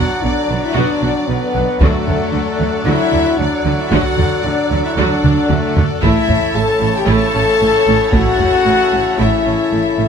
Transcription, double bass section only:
0.24 B1
0.50 B1
0.76 B1
1.02 B1
1.29 B1
1.55 B1
1.80 D2
2.07 D2
2.33 D2
2.60 D2
2.86 D2
3.12 D2
3.39 D2
3.64 D2
3.91 D2
4.18 D2
4.44 D2
4.71 D2
4.97 D2
5.24 D2
5.49 D2
5.76 D2
6.02 A1
6.28 A1
6.55 A1
6.81 A1
7.07 A1
7.35 A1
7.61 A1
7.88 A1
8.13 A1
8.40 A1
8.66 A1
8.93 A1
9.20 A1
9.46 A1
9.73 A1
9.99 A1

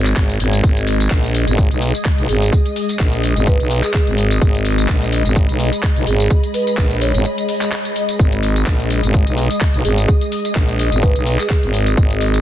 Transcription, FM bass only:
Already playing: G#1
0.16 G#1
0.40 G#1
0.64 G#1
1.11 A#1
1.48 G#1
1.71 B1
2.18 B1
2.29 G#1
3.00 A#1
3.36 G#1
3.60 B1
4.07 G#1
4.42 G#1
4.89 A#1
5.25 G#1
5.49 B1
5.96 B1
6.07 G#1
6.78 A#1
7.14 G#1
8.19 G#1
8.67 A#1
9.03 G#1
9.27 B1
9.74 B1
9.85 G#1
10.56 A#1
10.92 G#1
11.16 B1
11.63 G#1
11.97 G#1

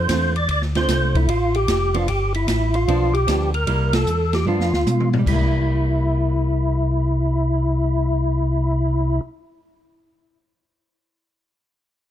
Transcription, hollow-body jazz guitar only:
0.10 D3 A3 C4 F4
0.76 D3 A3 C4 F4
1.94 F3 B3 D4
2.88 F3 B3 D4
3.27 F3 B3 D4
3.67 G3 A#3 E4
4.47 F3 B3 D4
5.19 G3
5.33 A#3
5.44 E4

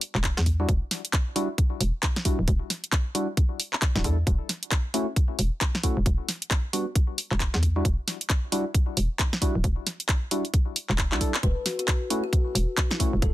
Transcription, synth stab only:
0.60 G3 D4 E4 F#4
1.36 G3 D4 E4 F#4
2.25 G3 D4 E4 F#4
3.15 G3 D4 E4 F#4
3.96 G3 D4 E4 F#4
4.04 G3 D4 E4 A4
4.94 A3 C#4 E4 F#4
5.84 A3 C#4 E4 F#4
6.73 G3 B3 D4 F#4
7.76 G3 D4 E4 F#4
8.52 G3 D4 E4 F#4
9.42 G3 D4 E4 F#4
10.31 G3 D4 E4 F#4
11.12 G3 D4 E4 F#4
11.21 G3 D4 E4 A4
12.10 A3 C#4 E4 F#4
13.00 A3 C#4 E4 F#4

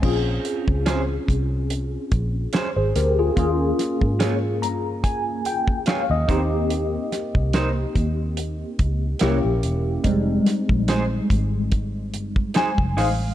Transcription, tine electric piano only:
0.02 C4 C#4 F4 G#4
2.76 G#4 C5
2.96 G4 A#4
3.19 F4 G#4
3.36 A#3 C#4 F4 G#4
4.62 A#5
5.04 G#5
5.46 G5
5.88 F5
6.11 D#5
6.28 A#3 C4 D#4 G4
9.21 A#3 C#4 E4 G4
10.04 G3 G#3 C4 D#4
12.57 G#5
12.98 F5

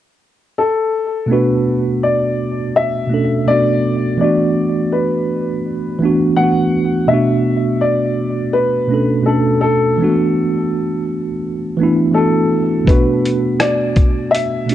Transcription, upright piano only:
0.58 A4
1.32 B4
2.03 D5
2.76 E5
3.48 D5
4.21 D5
4.92 B4
6.36 F#5
7.08 E5
7.81 D5
8.53 B4
9.26 A4
9.61 A4
12.14 A4
12.87 B4
13.60 D5
14.31 E5

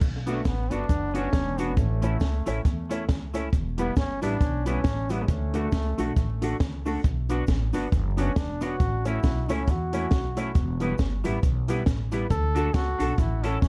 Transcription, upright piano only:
0.26 D4 F#4 B4
0.70 D4 F#4 B4
1.14 D4 F#4 B4
1.58 D4 F#4 B4
2.02 E4 A4 C#5
2.46 E4 A4 C#5
2.90 E4 A4 C#5
3.34 E4 A4 C#5
3.77 E4 G4 B4
4.21 E4 G4 B4
4.65 E4 G4 B4
5.09 E4 G4 B4
5.53 D4 F#4 A4
5.97 D4 F#4 A4
6.41 D4 F#4 A4
6.85 D4 F#4 A4
7.29 D4 F#4 B4
7.73 D4 F#4 B4
8.17 D4 F#4 B4
8.61 D4 F#4 B4
9.04 E4 A4 C#5
9.48 E4 A4 C#5
9.92 E4 A4 C#5
10.36 E4 A4 C#5
10.80 E4 G4 B4
11.24 E4 G4 B4
11.67 E4 G4 B4
12.11 E4 G4 B4
12.55 D4 F#4 A4
12.99 D4 F#4 A4
13.43 C#4 E4 A4

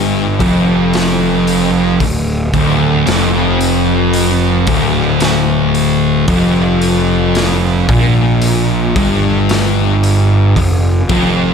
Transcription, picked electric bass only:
Already playing: G1
0.40 F1
2.01 D1
2.54 D1
3.07 F1
4.67 D1
6.29 F1
7.89 A#1
8.96 G1
10.56 F1
11.10 F1

